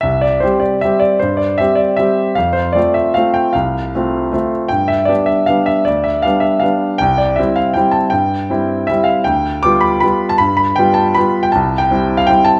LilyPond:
<<
  \new Staff \with { instrumentName = "Grand piano" } { \time 3/4 \key c \major \tempo 4 = 157 e''8 d''8 c''8 d''8 e''8 d''8 | c''8 d''8 e''8 d''8 e''4 | f''8 c''8 d''8 e''8 f''8 g''8 | f''2~ f''8 r8 |
g''8 e''8 d''8 e''8 f''8 e''8 | d''8 e''8 f''8 e''8 f''4 | g''8 d''8 e''8 f''8 g''8 a''8 | g''2 e''8 f''8 |
g''4 d'''8 b''8 b''8. a''16 | b''8 b''8 g''8 a''8 b''8. g''16 | a''8. g''4 f''16 g''8 a''8 | }
  \new Staff \with { instrumentName = "Grand piano" } { \time 3/4 \key c \major c,4 <g c' g'>4 <g c' g'>4 | g,4 <g c' g'>4 <g c' g'>4 | f,4 <a c' f'>4 <a c' f'>4 | c,4 <a c' f'>4 <a c' f'>4 |
g,4 <g b d'>4 <g b d'>4 | d,4 <g b d'>4 <g b d'>4 | c,4 <g c' e'>4 <g c' e'>4 | g,4 <g c' e'>4 <g c' e'>4 |
d,4 <g b f'>4 <g b f'>4 | g,4 <g b f'>4 <g b f'>4 | c,4 <g c' e'>4 <g c' e'>4 | }
>>